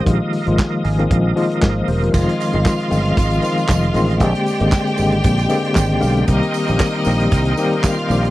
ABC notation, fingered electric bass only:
X:1
M:4/4
L:1/16
Q:"Swing 16ths" 1/4=116
K:Bbmix
V:1 name="Fingered electric bass" clef=bass
B,,, z2 A,,, z2 A,,,2 B,,,2 z2 A,,,2 _F,,,2 | F,,, z2 G,,, z2 G,,,2 A,,,2 z2 F,,,2 =A,,,2 | B,,, z2 A,,, z2 A,,,2 B,,,2 z2 A,,,2 _C,,2 | C,, z2 B,,, z2 B,,,2 C,,2 z4 B,,,2 |]